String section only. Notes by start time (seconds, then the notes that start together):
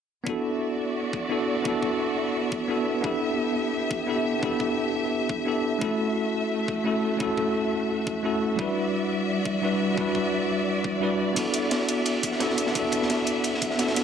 0.27 B3 F#4 D5 E5
3.05 G4
5.81 A3 F#4
8.59 G3 D5 E5
11.36 B3 E5